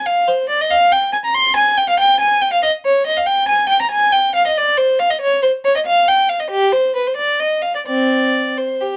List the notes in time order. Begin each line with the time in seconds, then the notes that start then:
0.06 F5
0.28 C5
0.49 D5
0.61 D#5
0.71 F5
0.92 G5
1.13 G#5
1.25 A#5
1.34 C6
1.56 G#5
1.77 G5
1.89 F5
2.00 G5
2.20 G#5
2.41 G5
2.53 F5
2.63 D#5
2.85 C#5
3.06 D#5
3.17 F5
3.26 G5
3.48 G#5
3.69 G5
3.82 A#5
3.91 G#5
4.12 G5
4.35 F5
4.47 D#5
4.57 D5
4.78 C5
4.99 F5
5.10 D#5
5.21 C#5
5.43 C5
5.65 C#5
5.76 D#5
5.86 F5
6.08 G5
6.29 F5
6.40 D#5
6.50 G4
6.72 C5
6.95 B4
7.07 C5
7.16 D5
7.39 D#5
7.62 F5
7.75 D5
7.86 C4 D5
8.57 C5
8.81 G4